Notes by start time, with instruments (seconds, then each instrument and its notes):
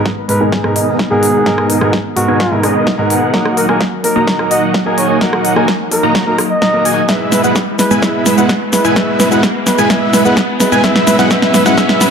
Already playing: analog synth pad G#3 B3 D#4 A#4, riser
0.06 kick, snare
0.28 grand piano G#2 G#3 B3 D#4 A#4, muted trumpet B4, open hi-hat
0.41 supersaw synth B3 D#4 G#4 A#4 G#5, analog synth lead G#5
0.52 kick, snare
0.64 grand piano G#2 G#3 B3 D#4 A#4, cross-stick
0.76 supersaw synth B3 D#4 G#4 A#4 D#5, analog synth lead D#5, open hi-hat
0.99 kick, snare
1.10 grand piano G#2 G#3 B3 D#4 A#4, supersaw synth B3 D#4 G#4 A#4 F#5, muted trumpet G#4, analog synth lead F#5
1.23 open hi-hat
1.46 grand piano G#2 G#3 B3 D#4 A#4, supersaw synth B3, analog synth lead D#5, kick, snare
1.58 cross-stick
1.70 muted trumpet D#4, open hi-hat
1.81 grand piano G#2 G#3 B3 D#4 A#4, supersaw synth B3 D#4 G#4 A#4 F#5, muted trumpet D#4, analog synth lead F#5, cross-stick
1.93 kick, snare
2.16 grand piano G#2 G#3 B3 D#4 A#4, muted trumpet F#4, open hi-hat
2.28 supersaw synth B3 D#4 G#4 A#4 G#5, analog synth lead G#5
2.40 kick, snare
2.51 grand piano G#2 G#3 B3 D#4 A#4
2.63 supersaw synth B3 D#4 G#4 A#4 D#5, analog synth lead D#5, cross-stick, open hi-hat
2.87 kick, snare
2.98 grand piano G#2 G#3 B3 D#4 A#4, supersaw synth B3 D#4 G#4 A#4 F#5, analog synth lead F#5
3.10 open hi-hat
3.33 grand piano F#3 A#3 D#4 A#4, analog synth pad F#3 A#3, supersaw synth A#3 D#4 F#4 D#5 F#5, analog synth lead F#5, kick, snare
3.46 cross-stick
3.57 muted trumpet A#4, open hi-hat
3.68 grand piano F#3 A#3 D#4 A#4, supersaw synth A#3 D#4 F#4 D#5 G#5, muted trumpet A#4, analog synth lead G#5, cross-stick
3.81 kick, snare
4.03 grand piano F#3 A#3 D#4 A#4, muted trumpet A#4, open hi-hat
4.16 supersaw synth A#3 D#4 F#4 D#5 A#5, analog synth lead A#5
4.27 kick, snare
4.39 grand piano F#3 A#3 D#4 A#4, cross-stick
4.51 supersaw synth A#3 D#4 F#4 D#5 F#5, muted trumpet D#5, analog synth lead F#5, open hi-hat
4.74 kick, snare
4.85 grand piano F#3 A#3 D#4 A#4, supersaw synth A#3 D#4 F#4 D#5 G#5, analog synth lead G#5
4.98 muted trumpet C#5, open hi-hat
5.09 muted trumpet C#5
5.21 grand piano F#3 A#3 D#4 A#4, supersaw synth A#3 D#4 F#4 D#5 F#5, analog synth lead F#5, kick, snare
5.33 cross-stick
5.45 open hi-hat
5.56 grand piano F#3 A#3 D#4 A#4, supersaw synth A#3 D#4 F#4 D#5 G#5, analog synth lead G#5, cross-stick
5.68 kick, snare
5.91 grand piano F#3 A#3 D#4 A#4, muted trumpet A#4, open hi-hat
6.03 supersaw synth A#3 D#4 F#4 D#5 A#5, analog synth lead A#5
6.15 kick, snare
6.26 grand piano F#3 A#3 D#4 A#4
6.38 cross-stick, open hi-hat
6.50 muted trumpet D#5
6.62 supersaw synth A#3 D#4 F#4 D#5 A#5, analog synth lead A#5, kick, snare
6.73 grand piano F#3 A#3 D#4 A#4
6.85 supersaw synth A#3 D#4 F#4 D#5 G#5, analog synth lead G#5, open hi-hat
7.08 grand piano G#3 B3 E4 B4, analog synth pad G#3 B3 E4 B4, supersaw synth G#3 B3 E4 B4 E5, analog synth lead E5, kick, snare, shaker
7.32 muted trumpet B4, snare, open hi-hat, shaker
7.43 grand piano G#3 B3 E4 B4, supersaw synth G#3 B3 E4 B4 F#5, muted trumpet B4, analog synth lead F#5, shaker
7.56 kick, snare, shaker
7.78 grand piano G#3 B3 E4 B4, muted trumpet B4, snare, open hi-hat, shaker
7.91 supersaw synth G#3 B3 E4 B4 G#5, analog synth lead G#5, shaker
8.02 grand piano G#3 B3 E4 B4, supersaw synth G#3 B3 E4 B4, analog synth lead E5, kick, snare, shaker
8.26 muted trumpet B4, snare, open hi-hat, shaker
8.37 grand piano G#3 B3 E4 B4, supersaw synth G#3 B3 E4 B4 F#5, muted trumpet B4, analog synth lead F#5, shaker
8.49 kick, snare, shaker
8.72 grand piano G#3 B3 E4 B4, muted trumpet B4, snare, open hi-hat, shaker
8.85 supersaw synth G#3 B3 E4 B4 G#5, analog synth lead G#5, shaker
8.96 grand piano G#3 B3 E4 B4, supersaw synth G#3 B3 E4 B4, analog synth pad F#4, analog synth lead E5, kick, snare, shaker
9.20 muted trumpet B4, snare, open hi-hat, shaker
9.31 grand piano G#3 B3 E4 B4, supersaw synth G#3 B3 E4 B4 F#5, muted trumpet B4, analog synth lead F#5, shaker
9.43 kick, snare, shaker
9.66 grand piano G#3 B3 E4 B4, muted trumpet B4, snare, open hi-hat, shaker
9.78 supersaw synth G#3 B3 E4 B4 G#5, analog synth lead G#5, shaker
9.89 grand piano G#3 B3 E4 B4, supersaw synth G#3 B3 E4 B4 E5, analog synth lead E5, kick, snare, shaker
10.13 muted trumpet B4, snare, open hi-hat, shaker
10.25 grand piano G#3 B3 E4 B4, supersaw synth G#3 B3 E4 B4 F#5, muted trumpet B4, analog synth lead F#5, shaker
10.37 kick, snare, shaker
10.60 grand piano G#3 B3 E4 B4, muted trumpet B4, snare, open hi-hat, shaker
10.72 supersaw synth G#3 B3 E4 B4 G#5, analog synth lead G#5, shaker
10.83 analog synth pad F#3 C#4, grand piano G#3 B3 E4 B4, analog synth lead E5, kick, snare, shaker
10.96 snare
11.07 muted trumpet B4, snare, open hi-hat, shaker
11.18 grand piano G#3 B3 E4 B4, supersaw synth G#3 B3 E4 B4 F#5, muted trumpet B4, analog synth lead F#5, snare, shaker
11.30 grand piano G#3 B3 E4 B4, supersaw synth G#3 B3 E4 B4 E5, analog synth lead E5, kick, snare, shaker
11.42 snare
11.54 muted trumpet B4, snare, open hi-hat, shaker
11.65 grand piano G#3 B3 E4 B4, supersaw synth G#3 B3 E4 B4 F#5, muted trumpet B4, analog synth lead F#5, snare, shaker
11.77 grand piano G#3 B3 E4 B4, supersaw synth G#3 B3 B4, analog synth lead E5, kick, snare, shaker
11.89 snare
12.01 muted trumpet B4, snare, open hi-hat, shaker